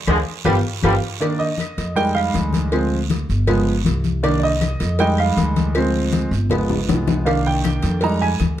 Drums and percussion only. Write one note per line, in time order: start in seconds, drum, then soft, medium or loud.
0.07 cowbell loud
0.07 high conga loud
0.07 long guiro loud
0.07 claves loud
0.45 cowbell loud
0.45 high conga loud
0.45 long guiro loud
0.45 claves loud
0.83 cowbell loud
0.83 high conga loud
0.83 long guiro loud
0.83 claves medium
1.21 cowbell loud
1.21 high conga soft
1.21 long guiro medium
1.21 claves medium
1.39 high conga soft
1.58 cowbell medium
1.58 high conga medium
1.58 short guiro medium
1.58 claves medium
1.77 cowbell medium
1.77 high conga soft
1.77 short guiro medium
1.96 cowbell loud
1.96 high conga soft
1.96 long guiro medium
2.15 high conga soft
2.15 claves medium
2.34 cowbell medium
2.34 high conga medium
2.34 short guiro medium
2.53 cowbell medium
2.53 high conga medium
2.53 short guiro medium
2.72 cowbell loud
2.72 long guiro medium
2.72 claves medium
2.91 high conga soft
3.10 cowbell medium
3.10 high conga loud
3.10 short guiro medium
3.29 high conga soft
3.29 short guiro medium
3.47 cowbell loud
3.47 high conga soft
3.47 low conga medium
3.47 long guiro medium
3.47 claves medium
3.67 high conga soft
3.85 cowbell medium
3.85 high conga medium
3.85 short guiro medium
4.04 high conga medium
4.04 short guiro medium
4.24 cowbell loud
4.24 long guiro medium
4.24 claves medium
4.42 high conga soft
4.61 cowbell medium
4.61 high conga medium
4.61 short guiro medium
4.61 claves medium
4.80 cowbell medium
4.80 high conga soft
4.80 short guiro medium
4.99 cowbell loud
4.99 high conga soft
4.99 long guiro medium
5.18 high conga soft
5.18 claves medium
5.37 cowbell medium
5.37 high conga medium
5.37 short guiro medium
5.56 cowbell medium
5.56 high conga medium
5.56 short guiro medium
5.75 cowbell loud
5.75 high conga soft
5.75 long guiro medium
5.75 claves medium
5.94 high conga soft
6.12 cowbell medium
6.12 high conga medium
6.12 short guiro medium
6.32 high conga soft
6.32 short guiro medium
6.50 cowbell loud
6.50 high bongo medium
6.50 high conga soft
6.50 low conga loud
6.50 long guiro medium
6.50 claves medium
6.69 high bongo medium
6.69 high conga soft
6.69 low conga medium
6.89 cowbell medium
6.89 low bongo loud
6.89 high conga medium
6.89 short guiro medium
7.07 low bongo loud
7.07 high conga loud
7.07 short guiro medium
7.26 cowbell loud
7.26 high conga soft
7.26 long guiro medium
7.26 claves medium
7.46 high conga soft
7.64 cowbell medium
7.64 high conga loud
7.64 short guiro medium
7.64 claves medium
7.82 cowbell medium
7.82 high conga soft
7.82 short guiro medium
8.01 cowbell loud
8.01 high conga soft
8.01 long guiro medium
8.22 high conga soft
8.22 claves medium
8.40 cowbell medium
8.40 high conga loud
8.40 short guiro medium